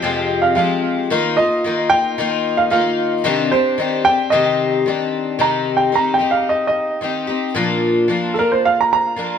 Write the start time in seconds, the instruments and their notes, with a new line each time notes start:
Already playing: grand piano G5
0.02 twelve-string acoustic guitar F2 C3 F3 G#3 C4 G4
0.42 grand piano F5
0.55 twelve-string acoustic guitar F3 G#3 C4 G4, grand piano F5
1.10 twelve-string acoustic guitar D#3 A#3 D#4 F4
1.37 twelve-string acoustic guitar D#4 F4, grand piano D#5
1.42 twelve-string acoustic guitar A#3
1.64 twelve-string acoustic guitar D#3 A#3 D#4 F4
1.90 twelve-string acoustic guitar D#4 F4, grand piano G5
1.94 twelve-string acoustic guitar A#3
2.18 twelve-string acoustic guitar D#3 A#3 D#4 F4
2.57 grand piano F5
2.70 twelve-string acoustic guitar D#3 A#3 D#4 F4, grand piano F5
3.24 twelve-string acoustic guitar C3 D#3 C4 D4 G4
3.51 twelve-string acoustic guitar C4 D4 G4, grand piano C5
3.78 twelve-string acoustic guitar D#3 C4 D4 G4
4.05 twelve-string acoustic guitar C4 D4 G4, grand piano G5
4.30 twelve-string acoustic guitar C3 D#3 C4 G4, grand piano D#5
4.86 twelve-string acoustic guitar D#3 C4 D4 G4
5.39 twelve-string acoustic guitar C3 D#3 C4 D#4 G4, grand piano A#5
5.77 grand piano G5
5.92 twelve-string acoustic guitar D#3 C4 D#4 G4, grand piano A#5
6.14 grand piano G5
6.19 twelve-string acoustic guitar C4 D#4 G4
6.31 grand piano F5
6.49 grand piano D#5
6.67 grand piano D#5
7.01 twelve-string acoustic guitar D#3 C4 D#4 G4
7.27 twelve-string acoustic guitar C4 D#4 G4
7.55 twelve-string acoustic guitar A#2 F3 A#3 D4 F4
8.08 twelve-string acoustic guitar F3 A#3 D4 F4
8.34 twelve-string acoustic guitar D4 F4, grand piano A4
8.39 twelve-string acoustic guitar A#3, grand piano A#4
8.52 grand piano C5
8.65 grand piano F5
8.81 grand piano A#5
8.93 grand piano A#5
9.16 twelve-string acoustic guitar F3 A#3 D4 F4